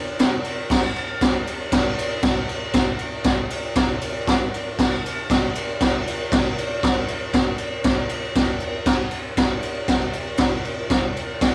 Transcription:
0.19 snare loud
0.19 ride loud
0.44 ride medium
0.70 kick loud
0.70 snare loud
0.70 crash loud
0.96 ride medium
1.21 kick loud
1.21 snare loud
1.21 ride loud
1.47 ride medium
1.72 kick loud
1.72 snare loud
1.72 ride loud
1.99 ride medium
2.22 kick loud
2.22 snare loud
2.22 ride loud
2.49 ride medium
2.73 kick loud
2.73 snare loud
2.73 ride loud
2.99 ride medium
3.24 kick loud
3.24 snare loud
3.24 ride loud
3.50 ride medium
3.75 kick loud
3.75 snare loud
3.75 ride loud
4.01 ride medium
4.27 kick loud
4.27 snare loud
4.27 ride loud
4.54 ride medium
4.79 kick loud
4.79 snare loud
4.79 crash loud
5.06 ride medium
5.30 kick loud
5.30 snare loud
5.30 ride loud
5.55 ride medium
5.81 kick loud
5.81 snare loud
5.81 ride loud
6.07 ride medium
6.32 kick loud
6.32 snare loud
6.32 ride loud
6.58 ride medium
6.83 kick loud
6.83 snare loud
6.83 ride loud
7.08 ride medium
7.33 kick loud
7.33 snare loud
7.33 ride medium
7.58 ride medium
7.84 kick loud
7.84 snare loud
7.84 ride loud
8.09 ride medium
8.35 kick loud
8.35 snare loud
8.35 ride loud
8.60 ride medium
8.86 kick loud
8.86 snare loud
8.86 crash loud
9.11 ride medium
9.37 kick loud
9.37 snare loud
9.37 ride loud
9.63 ride medium
9.88 kick loud
9.88 snare loud
9.88 ride loud
10.13 ride medium
10.37 kick loud
10.37 snare loud
10.37 ride loud
10.65 ride medium
10.90 kick loud
10.90 snare loud
10.90 ride loud
11.17 ride medium
11.41 kick loud
11.41 snare loud
11.41 ride loud

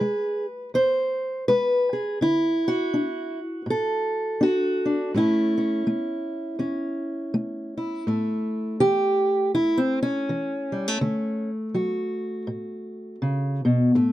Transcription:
0.00 0.68 G#3 medium
0.00 0.45 G#4 medium
0.00 0.74 B4 loud
0.74 1.42 E2 medium
0.74 1.48 C5 loud
1.48 2.16 G#3 medium
1.48 2.21 B4 medium
1.93 2.18 G#4 soft
2.21 2.88 D3 medium
2.21 3.39 E4 medium
2.68 4.42 F#4 medium
2.94 3.61 D4 medium
3.66 4.34 A2 medium
3.70 5.15 A4 medium
4.41 4.84 D4 medium
4.41 5.15 F#4 medium
4.86 5.11 D4 soft
5.14 5.82 A2 medium
5.14 5.86 A3 soft
5.14 5.56 C#4 medium
5.14 7.76 E4 medium
5.58 6.58 C#4 soft
5.87 6.54 A3 medium
6.59 7.27 E2 medium
6.59 8.03 C#4 soft
7.34 8.01 A3 medium
7.77 8.80 E4 soft
8.07 8.75 A2 medium
8.07 10.72 A3 soft
8.80 9.48 E3 medium
8.80 9.54 G4 loud
9.54 10.22 E2 medium
9.54 9.79 E4 medium
9.78 10.02 C4 medium
10.03 11.49 C#4 medium
10.29 10.96 E3 medium
10.72 10.88 G3 soft
10.88 11.00 A3 soft
11.01 11.68 D3 medium
11.01 13.96 A3 soft
11.74 12.42 F#3 medium
11.74 13.91 F#4 medium
12.47 13.15 A2 medium
13.22 13.64 C#3 medium
13.65 13.94 B2 medium
13.95 14.12 A2 medium
13.95 14.12 A3 soft

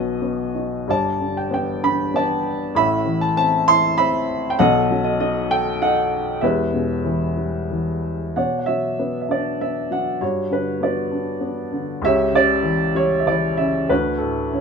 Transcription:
0.00 0.83 B1 medium
0.00 0.83 B2 medium
0.00 0.85 F#3 soft
0.00 0.52 F#4 medium
0.00 0.52 B4 soft
0.00 0.53 D#5 medium
0.22 0.85 B3 soft
0.55 0.86 D#4 soft
0.88 2.71 G1 medium
0.88 2.71 G2 medium
0.88 1.80 D5 medium
0.88 1.34 A5 medium
1.20 2.41 D3 soft
1.37 1.51 G5 medium
1.51 2.12 B3 soft
1.51 1.85 G5 medium
1.83 2.73 D4 soft
1.83 2.12 B5 medium
2.14 2.73 B3 medium
2.14 2.72 D5 medium
2.14 2.58 A5 medium
2.75 4.55 A1 medium
2.75 4.55 A2 medium
2.75 3.64 E5 medium
2.75 3.23 B5 medium
3.05 4.24 E3 soft
3.21 3.36 A5 medium
3.37 3.97 C4 medium
3.37 3.69 A5 loud
3.68 4.57 E4 medium
3.68 3.99 C6 loud
3.98 4.58 C4 medium
3.98 4.55 E5 medium
3.98 4.40 B5 medium
4.50 4.58 G5 medium
4.59 6.38 B1 medium
4.59 6.38 B2 medium
4.59 5.46 A4 medium
4.59 5.03 D#5 medium
4.59 5.01 F#5 loud
4.91 6.08 F#3 medium
5.04 5.18 D#5 medium
5.20 5.80 D#4 medium
5.20 5.48 D#5 medium
5.51 5.82 A4 medium
5.51 5.82 G5 medium
5.82 6.41 D#4 medium
5.82 6.40 A4 medium
5.82 6.40 D#5 medium
5.82 6.39 F#5 medium
6.41 8.32 E1 medium
6.41 8.32 E2 medium
6.41 7.67 G4 medium
6.41 7.67 B4 medium
6.41 7.66 E5 medium
6.74 8.00 B2 soft
7.05 7.69 E3 soft
7.37 8.33 G3 soft
7.71 8.34 E3 soft
8.36 10.18 B2 soft
8.36 8.66 C#5 soft
8.36 9.26 D5 soft
8.36 8.57 F#5 medium
8.59 8.67 F#5 soft
8.66 9.88 F#3 soft
8.66 9.57 C#5 soft
8.66 9.20 E5 medium
8.99 9.60 B3 soft
9.21 9.29 E5 soft
9.29 10.18 D4 soft
9.29 9.59 D5 medium
9.61 10.20 B3 soft
9.61 9.93 E5 medium
9.91 10.20 F#3 soft
9.91 10.23 F#5 medium
10.21 11.99 G2 medium
10.21 10.82 F#4 soft
10.21 10.49 C#5 medium
10.50 11.68 D3 soft
10.50 10.80 B4 medium
10.80 11.39 B3 soft
10.80 11.70 F#4 soft
10.80 11.70 B4 soft
10.80 11.39 D5 medium
11.11 12.00 D4 soft
11.41 12.01 B3 soft
11.72 12.02 D3 soft
12.02 13.85 C#2 medium
12.02 12.34 G4 medium
12.02 12.93 C#5 medium
12.02 12.35 E5 medium
12.32 13.54 C#3 soft
12.32 13.24 G4 medium
12.32 12.93 D5 medium
12.63 13.25 E3 soft
12.95 13.87 G3 medium
12.95 13.21 C#5 medium
13.20 13.27 E5 medium
13.26 13.88 E3 soft
13.26 13.60 D5 medium
13.57 13.89 C#3 soft
13.57 13.87 E5 medium
13.89 14.61 D2 medium
13.89 14.61 D4 medium
13.89 14.61 F#4 medium
13.89 14.19 B4 medium
14.18 14.61 A2 soft
14.18 14.52 A4 medium
14.52 14.61 D3 soft
14.52 14.61 C#5 soft

